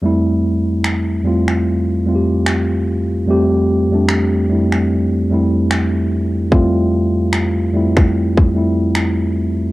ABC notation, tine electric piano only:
X:1
M:4/4
L:1/16
Q:"Swing 16ths" 1/4=74
K:F
V:1 name="Tine electric piano"
[F,,G,A,CE]4- [F,,G,A,CE] z [F,,G,A,CF]3 z [F,,G,A,CFG]4- [F,,G,A,CFG] z | [F,,G,A,CG]2 z [F,,G,A,CD]2 z [F,,G,A,CE]3 z [F,,G,A,CE]4- [F,,G,A,CE] z | [F,,G,A,CF]4- [F,,G,A,CF] z [F,,G,A,CE]3 z [F,,G,A,CE]4- [F,,G,A,CE] z |]